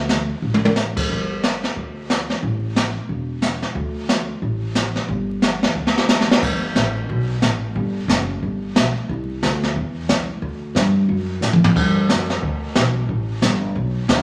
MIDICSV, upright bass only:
0, 0, Header, 1, 2, 480
1, 0, Start_track
1, 0, Key_signature, 1, "major"
1, 0, Tempo, 333333
1, 1568, Time_signature, 4, 2, 24, 8
1, 20477, End_track
2, 0, Start_track
2, 0, Title_t, "Upright bass"
2, 0, Program_c, 0, 32
2, 0, Note_on_c, 0, 38, 94
2, 420, Note_off_c, 0, 38, 0
2, 608, Note_on_c, 0, 33, 88
2, 1377, Note_off_c, 0, 33, 0
2, 1580, Note_on_c, 0, 31, 86
2, 2344, Note_off_c, 0, 31, 0
2, 2538, Note_on_c, 0, 38, 81
2, 3303, Note_off_c, 0, 38, 0
2, 3493, Note_on_c, 0, 33, 91
2, 4260, Note_off_c, 0, 33, 0
2, 4450, Note_on_c, 0, 28, 77
2, 5219, Note_off_c, 0, 28, 0
2, 5400, Note_on_c, 0, 38, 94
2, 6173, Note_off_c, 0, 38, 0
2, 6365, Note_on_c, 0, 33, 83
2, 7136, Note_off_c, 0, 33, 0
2, 7322, Note_on_c, 0, 31, 97
2, 8094, Note_off_c, 0, 31, 0
2, 8277, Note_on_c, 0, 38, 87
2, 9051, Note_off_c, 0, 38, 0
2, 9244, Note_on_c, 0, 31, 92
2, 9709, Note_off_c, 0, 31, 0
2, 9718, Note_on_c, 0, 33, 93
2, 10190, Note_off_c, 0, 33, 0
2, 10214, Note_on_c, 0, 35, 92
2, 10678, Note_off_c, 0, 35, 0
2, 10684, Note_on_c, 0, 33, 77
2, 11153, Note_off_c, 0, 33, 0
2, 11168, Note_on_c, 0, 31, 95
2, 11627, Note_off_c, 0, 31, 0
2, 11635, Note_on_c, 0, 30, 98
2, 12108, Note_off_c, 0, 30, 0
2, 12135, Note_on_c, 0, 31, 79
2, 12598, Note_off_c, 0, 31, 0
2, 12604, Note_on_c, 0, 35, 82
2, 12881, Note_off_c, 0, 35, 0
2, 13094, Note_on_c, 0, 36, 95
2, 13557, Note_off_c, 0, 36, 0
2, 13575, Note_on_c, 0, 38, 100
2, 14037, Note_off_c, 0, 38, 0
2, 14053, Note_on_c, 0, 40, 91
2, 14517, Note_off_c, 0, 40, 0
2, 14527, Note_on_c, 0, 36, 75
2, 14994, Note_off_c, 0, 36, 0
2, 15004, Note_on_c, 0, 38, 88
2, 15468, Note_off_c, 0, 38, 0
2, 15477, Note_on_c, 0, 43, 97
2, 15948, Note_off_c, 0, 43, 0
2, 15966, Note_on_c, 0, 42, 93
2, 16423, Note_off_c, 0, 42, 0
2, 16432, Note_on_c, 0, 45, 80
2, 16905, Note_off_c, 0, 45, 0
2, 16934, Note_on_c, 0, 43, 92
2, 17397, Note_off_c, 0, 43, 0
2, 17406, Note_on_c, 0, 42, 95
2, 17872, Note_off_c, 0, 42, 0
2, 17887, Note_on_c, 0, 38, 81
2, 18353, Note_off_c, 0, 38, 0
2, 18368, Note_on_c, 0, 35, 93
2, 18833, Note_off_c, 0, 35, 0
2, 18846, Note_on_c, 0, 33, 84
2, 19312, Note_off_c, 0, 33, 0
2, 19324, Note_on_c, 0, 31, 99
2, 19791, Note_off_c, 0, 31, 0
2, 19806, Note_on_c, 0, 35, 86
2, 20272, Note_off_c, 0, 35, 0
2, 20279, Note_on_c, 0, 37, 95
2, 20477, Note_off_c, 0, 37, 0
2, 20477, End_track
0, 0, End_of_file